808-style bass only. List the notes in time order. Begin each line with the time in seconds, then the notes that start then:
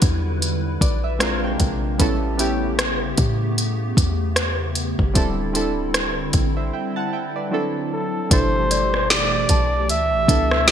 0.02 E2
0.81 A#1
1.60 A#1
2.00 A1
3.18 A2
3.97 E2
4.99 G1
5.16 D1
6.34 A1
8.31 G1
9.50 B1
9.89 D2
10.12 B1
10.28 C#2